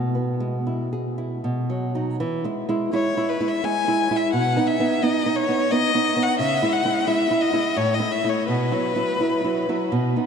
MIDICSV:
0, 0, Header, 1, 3, 480
1, 0, Start_track
1, 0, Key_signature, 4, "major"
1, 0, Tempo, 767263
1, 1374, Time_signature, 3, 2, 24, 8
1, 1374, Tempo, 727273
1, 1854, Tempo, 692042
1, 5214, Tempo, 716846
1, 6885, End_track
2, 0, Start_track
2, 0, Title_t, "Violin"
2, 0, Program_c, 0, 40
2, 1857, Note_on_c, 0, 73, 79
2, 2105, Note_on_c, 0, 71, 69
2, 2115, Note_off_c, 0, 73, 0
2, 2239, Note_on_c, 0, 76, 76
2, 2250, Note_off_c, 0, 71, 0
2, 2352, Note_on_c, 0, 80, 94
2, 2362, Note_off_c, 0, 76, 0
2, 2715, Note_on_c, 0, 76, 82
2, 2725, Note_off_c, 0, 80, 0
2, 2823, Note_off_c, 0, 76, 0
2, 2827, Note_on_c, 0, 78, 84
2, 3067, Note_on_c, 0, 76, 82
2, 3077, Note_off_c, 0, 78, 0
2, 3308, Note_on_c, 0, 75, 84
2, 3319, Note_off_c, 0, 76, 0
2, 3543, Note_on_c, 0, 73, 91
2, 3554, Note_off_c, 0, 75, 0
2, 3783, Note_on_c, 0, 75, 112
2, 3793, Note_off_c, 0, 73, 0
2, 4143, Note_on_c, 0, 78, 101
2, 4153, Note_off_c, 0, 75, 0
2, 4253, Note_off_c, 0, 78, 0
2, 4257, Note_on_c, 0, 76, 97
2, 4491, Note_on_c, 0, 78, 90
2, 4501, Note_off_c, 0, 76, 0
2, 4730, Note_on_c, 0, 76, 86
2, 4740, Note_off_c, 0, 78, 0
2, 4964, Note_on_c, 0, 75, 85
2, 4975, Note_off_c, 0, 76, 0
2, 5212, Note_on_c, 0, 73, 95
2, 5222, Note_off_c, 0, 75, 0
2, 5328, Note_on_c, 0, 75, 90
2, 5338, Note_off_c, 0, 73, 0
2, 5443, Note_on_c, 0, 76, 81
2, 5453, Note_off_c, 0, 75, 0
2, 5564, Note_on_c, 0, 73, 78
2, 5574, Note_off_c, 0, 76, 0
2, 5680, Note_off_c, 0, 73, 0
2, 5684, Note_on_c, 0, 71, 83
2, 6630, Note_off_c, 0, 71, 0
2, 6885, End_track
3, 0, Start_track
3, 0, Title_t, "Nylon-string guitar"
3, 0, Program_c, 1, 24
3, 0, Note_on_c, 1, 47, 47
3, 94, Note_on_c, 1, 59, 35
3, 252, Note_on_c, 1, 56, 42
3, 353, Note_off_c, 1, 59, 0
3, 417, Note_on_c, 1, 64, 39
3, 512, Note_off_c, 1, 56, 0
3, 577, Note_off_c, 1, 64, 0
3, 579, Note_on_c, 1, 68, 41
3, 738, Note_on_c, 1, 64, 38
3, 835, Note_off_c, 1, 68, 0
3, 873, Note_off_c, 1, 47, 0
3, 898, Note_off_c, 1, 64, 0
3, 901, Note_on_c, 1, 47, 51
3, 1061, Note_on_c, 1, 54, 37
3, 1212, Note_off_c, 1, 54, 0
3, 1220, Note_on_c, 1, 54, 37
3, 1223, Note_on_c, 1, 63, 41
3, 1358, Note_off_c, 1, 54, 0
3, 1360, Note_off_c, 1, 63, 0
3, 1361, Note_off_c, 1, 47, 0
3, 1377, Note_on_c, 1, 52, 60
3, 1530, Note_off_c, 1, 52, 0
3, 1537, Note_on_c, 1, 56, 46
3, 1542, Note_on_c, 1, 64, 52
3, 1680, Note_off_c, 1, 56, 0
3, 1682, Note_off_c, 1, 64, 0
3, 1698, Note_on_c, 1, 56, 52
3, 1701, Note_on_c, 1, 64, 55
3, 1840, Note_off_c, 1, 56, 0
3, 1842, Note_off_c, 1, 64, 0
3, 1858, Note_on_c, 1, 56, 49
3, 1862, Note_on_c, 1, 64, 57
3, 2006, Note_off_c, 1, 56, 0
3, 2008, Note_off_c, 1, 64, 0
3, 2024, Note_on_c, 1, 56, 45
3, 2028, Note_on_c, 1, 64, 54
3, 2171, Note_off_c, 1, 56, 0
3, 2172, Note_off_c, 1, 64, 0
3, 2187, Note_on_c, 1, 56, 46
3, 2188, Note_on_c, 1, 64, 51
3, 2333, Note_off_c, 1, 56, 0
3, 2334, Note_off_c, 1, 64, 0
3, 2349, Note_on_c, 1, 56, 54
3, 2352, Note_on_c, 1, 64, 58
3, 2494, Note_off_c, 1, 56, 0
3, 2495, Note_off_c, 1, 64, 0
3, 2514, Note_on_c, 1, 56, 54
3, 2518, Note_on_c, 1, 64, 53
3, 2655, Note_off_c, 1, 56, 0
3, 2657, Note_off_c, 1, 64, 0
3, 2676, Note_on_c, 1, 56, 52
3, 2677, Note_on_c, 1, 64, 56
3, 2816, Note_off_c, 1, 56, 0
3, 2816, Note_off_c, 1, 64, 0
3, 2831, Note_on_c, 1, 47, 66
3, 2985, Note_off_c, 1, 47, 0
3, 2991, Note_on_c, 1, 59, 57
3, 2996, Note_on_c, 1, 63, 65
3, 3135, Note_off_c, 1, 59, 0
3, 3136, Note_off_c, 1, 63, 0
3, 3154, Note_on_c, 1, 59, 56
3, 3159, Note_on_c, 1, 63, 69
3, 3296, Note_off_c, 1, 59, 0
3, 3298, Note_off_c, 1, 63, 0
3, 3315, Note_on_c, 1, 59, 55
3, 3318, Note_on_c, 1, 63, 67
3, 3457, Note_off_c, 1, 59, 0
3, 3457, Note_off_c, 1, 63, 0
3, 3473, Note_on_c, 1, 59, 54
3, 3476, Note_on_c, 1, 63, 66
3, 3615, Note_off_c, 1, 59, 0
3, 3617, Note_off_c, 1, 63, 0
3, 3632, Note_on_c, 1, 59, 54
3, 3636, Note_on_c, 1, 63, 58
3, 3775, Note_off_c, 1, 59, 0
3, 3776, Note_off_c, 1, 63, 0
3, 3794, Note_on_c, 1, 59, 60
3, 3797, Note_on_c, 1, 63, 66
3, 3935, Note_off_c, 1, 59, 0
3, 3936, Note_off_c, 1, 63, 0
3, 3951, Note_on_c, 1, 59, 57
3, 3955, Note_on_c, 1, 63, 63
3, 4090, Note_off_c, 1, 59, 0
3, 4093, Note_off_c, 1, 63, 0
3, 4101, Note_on_c, 1, 59, 57
3, 4106, Note_on_c, 1, 63, 66
3, 4243, Note_off_c, 1, 59, 0
3, 4245, Note_off_c, 1, 63, 0
3, 4261, Note_on_c, 1, 49, 74
3, 4412, Note_off_c, 1, 49, 0
3, 4420, Note_on_c, 1, 56, 58
3, 4422, Note_on_c, 1, 64, 62
3, 4561, Note_off_c, 1, 64, 0
3, 4562, Note_off_c, 1, 56, 0
3, 4576, Note_on_c, 1, 56, 61
3, 4581, Note_on_c, 1, 64, 71
3, 4719, Note_off_c, 1, 56, 0
3, 4721, Note_off_c, 1, 64, 0
3, 4732, Note_on_c, 1, 56, 58
3, 4735, Note_on_c, 1, 64, 64
3, 4877, Note_off_c, 1, 56, 0
3, 4877, Note_off_c, 1, 64, 0
3, 4892, Note_on_c, 1, 56, 52
3, 4896, Note_on_c, 1, 64, 58
3, 5037, Note_off_c, 1, 56, 0
3, 5039, Note_off_c, 1, 64, 0
3, 5049, Note_on_c, 1, 56, 47
3, 5052, Note_on_c, 1, 64, 61
3, 5197, Note_off_c, 1, 56, 0
3, 5198, Note_off_c, 1, 64, 0
3, 5212, Note_on_c, 1, 45, 70
3, 5366, Note_off_c, 1, 45, 0
3, 5368, Note_on_c, 1, 57, 51
3, 5370, Note_on_c, 1, 64, 58
3, 5513, Note_off_c, 1, 57, 0
3, 5513, Note_off_c, 1, 64, 0
3, 5530, Note_on_c, 1, 57, 47
3, 5535, Note_on_c, 1, 64, 46
3, 5673, Note_off_c, 1, 57, 0
3, 5675, Note_off_c, 1, 64, 0
3, 5692, Note_on_c, 1, 47, 58
3, 5845, Note_off_c, 1, 47, 0
3, 5848, Note_on_c, 1, 54, 46
3, 5852, Note_on_c, 1, 64, 49
3, 5992, Note_off_c, 1, 54, 0
3, 5994, Note_off_c, 1, 64, 0
3, 6009, Note_on_c, 1, 54, 50
3, 6014, Note_on_c, 1, 64, 48
3, 6154, Note_off_c, 1, 54, 0
3, 6156, Note_off_c, 1, 64, 0
3, 6172, Note_on_c, 1, 54, 42
3, 6175, Note_on_c, 1, 64, 48
3, 6317, Note_off_c, 1, 54, 0
3, 6318, Note_off_c, 1, 64, 0
3, 6335, Note_on_c, 1, 54, 41
3, 6337, Note_on_c, 1, 64, 44
3, 6478, Note_off_c, 1, 54, 0
3, 6479, Note_off_c, 1, 64, 0
3, 6500, Note_on_c, 1, 54, 42
3, 6503, Note_on_c, 1, 64, 47
3, 6641, Note_off_c, 1, 54, 0
3, 6642, Note_off_c, 1, 64, 0
3, 6654, Note_on_c, 1, 47, 60
3, 6810, Note_off_c, 1, 47, 0
3, 6818, Note_on_c, 1, 59, 39
3, 6822, Note_on_c, 1, 63, 43
3, 6885, Note_off_c, 1, 59, 0
3, 6885, Note_off_c, 1, 63, 0
3, 6885, End_track
0, 0, End_of_file